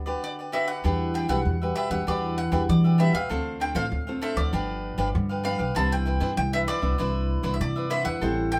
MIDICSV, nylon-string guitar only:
0, 0, Header, 1, 2, 480
1, 0, Start_track
1, 0, Key_signature, 1, "minor"
1, 0, Tempo, 614125
1, 662, Time_signature, 4, 2, 24, 8
1, 6719, End_track
2, 0, Start_track
2, 0, Title_t, "Nylon-string guitar"
2, 0, Program_c, 0, 24
2, 0, Note_on_c, 0, 55, 50
2, 48, Note_on_c, 0, 62, 56
2, 52, Note_on_c, 0, 66, 61
2, 55, Note_on_c, 0, 71, 64
2, 156, Note_off_c, 0, 55, 0
2, 176, Note_on_c, 0, 50, 53
2, 376, Note_off_c, 0, 62, 0
2, 378, Note_off_c, 0, 66, 0
2, 380, Note_off_c, 0, 71, 0
2, 414, Note_on_c, 0, 62, 54
2, 419, Note_on_c, 0, 66, 56
2, 421, Note_on_c, 0, 71, 62
2, 559, Note_off_c, 0, 62, 0
2, 560, Note_off_c, 0, 66, 0
2, 562, Note_off_c, 0, 71, 0
2, 636, Note_off_c, 0, 50, 0
2, 661, Note_on_c, 0, 52, 55
2, 664, Note_on_c, 0, 55, 50
2, 668, Note_on_c, 0, 62, 50
2, 669, Note_on_c, 0, 66, 62
2, 985, Note_off_c, 0, 55, 0
2, 986, Note_off_c, 0, 62, 0
2, 988, Note_off_c, 0, 66, 0
2, 1010, Note_on_c, 0, 55, 64
2, 1013, Note_on_c, 0, 62, 66
2, 1019, Note_on_c, 0, 66, 68
2, 1119, Note_off_c, 0, 52, 0
2, 1142, Note_on_c, 0, 47, 54
2, 1218, Note_off_c, 0, 55, 0
2, 1220, Note_off_c, 0, 62, 0
2, 1221, Note_off_c, 0, 66, 0
2, 1269, Note_on_c, 0, 55, 56
2, 1273, Note_on_c, 0, 62, 59
2, 1274, Note_on_c, 0, 66, 63
2, 1468, Note_off_c, 0, 55, 0
2, 1469, Note_off_c, 0, 62, 0
2, 1471, Note_off_c, 0, 66, 0
2, 1490, Note_on_c, 0, 55, 63
2, 1496, Note_on_c, 0, 62, 61
2, 1496, Note_on_c, 0, 66, 66
2, 1579, Note_off_c, 0, 55, 0
2, 1581, Note_off_c, 0, 62, 0
2, 1581, Note_off_c, 0, 66, 0
2, 1599, Note_off_c, 0, 47, 0
2, 1624, Note_on_c, 0, 52, 55
2, 1627, Note_on_c, 0, 55, 53
2, 1631, Note_on_c, 0, 62, 57
2, 1632, Note_on_c, 0, 66, 61
2, 1850, Note_off_c, 0, 55, 0
2, 1851, Note_off_c, 0, 62, 0
2, 1853, Note_off_c, 0, 66, 0
2, 1974, Note_on_c, 0, 55, 62
2, 1980, Note_on_c, 0, 62, 62
2, 1982, Note_on_c, 0, 66, 73
2, 2081, Note_off_c, 0, 52, 0
2, 2102, Note_on_c, 0, 47, 56
2, 2301, Note_off_c, 0, 55, 0
2, 2303, Note_off_c, 0, 62, 0
2, 2305, Note_off_c, 0, 66, 0
2, 2339, Note_on_c, 0, 55, 55
2, 2342, Note_on_c, 0, 62, 58
2, 2346, Note_on_c, 0, 66, 64
2, 2483, Note_off_c, 0, 55, 0
2, 2485, Note_off_c, 0, 62, 0
2, 2485, Note_off_c, 0, 66, 0
2, 2560, Note_off_c, 0, 47, 0
2, 2584, Note_on_c, 0, 50, 56
2, 2586, Note_on_c, 0, 57, 55
2, 2588, Note_on_c, 0, 60, 54
2, 2591, Note_on_c, 0, 65, 56
2, 2907, Note_off_c, 0, 57, 0
2, 2908, Note_off_c, 0, 60, 0
2, 2910, Note_off_c, 0, 65, 0
2, 2933, Note_on_c, 0, 57, 58
2, 2937, Note_on_c, 0, 60, 58
2, 2941, Note_on_c, 0, 65, 67
2, 3041, Note_off_c, 0, 50, 0
2, 3065, Note_on_c, 0, 45, 53
2, 3141, Note_off_c, 0, 57, 0
2, 3142, Note_off_c, 0, 60, 0
2, 3144, Note_off_c, 0, 65, 0
2, 3190, Note_on_c, 0, 57, 59
2, 3193, Note_on_c, 0, 60, 61
2, 3197, Note_on_c, 0, 65, 71
2, 3389, Note_off_c, 0, 57, 0
2, 3391, Note_off_c, 0, 60, 0
2, 3392, Note_off_c, 0, 65, 0
2, 3417, Note_on_c, 0, 53, 60
2, 3420, Note_on_c, 0, 59, 63
2, 3423, Note_on_c, 0, 62, 72
2, 3521, Note_off_c, 0, 45, 0
2, 3546, Note_on_c, 0, 43, 59
2, 3862, Note_off_c, 0, 53, 0
2, 3864, Note_off_c, 0, 59, 0
2, 3865, Note_off_c, 0, 62, 0
2, 3894, Note_on_c, 0, 53, 59
2, 3897, Note_on_c, 0, 59, 65
2, 3900, Note_on_c, 0, 62, 68
2, 4001, Note_off_c, 0, 43, 0
2, 4025, Note_on_c, 0, 50, 60
2, 4221, Note_off_c, 0, 53, 0
2, 4222, Note_off_c, 0, 59, 0
2, 4223, Note_off_c, 0, 62, 0
2, 4257, Note_on_c, 0, 53, 55
2, 4261, Note_on_c, 0, 59, 60
2, 4265, Note_on_c, 0, 62, 69
2, 4402, Note_off_c, 0, 53, 0
2, 4404, Note_off_c, 0, 59, 0
2, 4406, Note_off_c, 0, 62, 0
2, 4481, Note_off_c, 0, 50, 0
2, 4501, Note_on_c, 0, 48, 60
2, 4501, Note_on_c, 0, 52, 58
2, 4505, Note_on_c, 0, 59, 61
2, 4509, Note_on_c, 0, 62, 64
2, 4824, Note_off_c, 0, 52, 0
2, 4826, Note_off_c, 0, 59, 0
2, 4827, Note_off_c, 0, 62, 0
2, 4852, Note_on_c, 0, 52, 68
2, 4855, Note_on_c, 0, 59, 62
2, 4858, Note_on_c, 0, 62, 68
2, 4959, Note_off_c, 0, 48, 0
2, 4983, Note_on_c, 0, 43, 61
2, 5060, Note_off_c, 0, 52, 0
2, 5061, Note_off_c, 0, 59, 0
2, 5062, Note_off_c, 0, 62, 0
2, 5108, Note_on_c, 0, 52, 67
2, 5112, Note_on_c, 0, 59, 64
2, 5116, Note_on_c, 0, 62, 71
2, 5308, Note_off_c, 0, 52, 0
2, 5309, Note_off_c, 0, 59, 0
2, 5311, Note_off_c, 0, 62, 0
2, 5328, Note_on_c, 0, 52, 61
2, 5332, Note_on_c, 0, 59, 70
2, 5336, Note_on_c, 0, 62, 70
2, 5417, Note_off_c, 0, 52, 0
2, 5419, Note_off_c, 0, 59, 0
2, 5421, Note_off_c, 0, 62, 0
2, 5439, Note_off_c, 0, 43, 0
2, 5456, Note_on_c, 0, 48, 56
2, 5460, Note_on_c, 0, 52, 55
2, 5464, Note_on_c, 0, 62, 64
2, 5782, Note_off_c, 0, 52, 0
2, 5785, Note_off_c, 0, 62, 0
2, 5805, Note_on_c, 0, 52, 70
2, 5809, Note_on_c, 0, 59, 68
2, 5812, Note_on_c, 0, 62, 67
2, 5916, Note_off_c, 0, 48, 0
2, 5940, Note_on_c, 0, 43, 55
2, 6135, Note_off_c, 0, 52, 0
2, 6138, Note_off_c, 0, 59, 0
2, 6139, Note_off_c, 0, 62, 0
2, 6172, Note_on_c, 0, 52, 63
2, 6175, Note_on_c, 0, 59, 57
2, 6179, Note_on_c, 0, 62, 66
2, 6379, Note_off_c, 0, 52, 0
2, 6381, Note_off_c, 0, 59, 0
2, 6382, Note_off_c, 0, 62, 0
2, 6397, Note_off_c, 0, 43, 0
2, 6419, Note_on_c, 0, 45, 56
2, 6420, Note_on_c, 0, 55, 53
2, 6423, Note_on_c, 0, 60, 52
2, 6427, Note_on_c, 0, 64, 67
2, 6646, Note_off_c, 0, 55, 0
2, 6648, Note_off_c, 0, 60, 0
2, 6649, Note_off_c, 0, 64, 0
2, 6719, Note_off_c, 0, 45, 0
2, 6719, End_track
0, 0, End_of_file